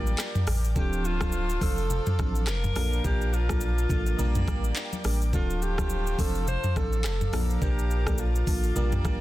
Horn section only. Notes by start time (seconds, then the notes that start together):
Already playing: A#3 G4 D5
0.76 A3 F4 C5
2.76 F3 D4 A#4
4.19 A#3 G4 D5
5.33 A3 F4 C5
7.33 F3 D4 A#4
8.76 A#3 G4 D5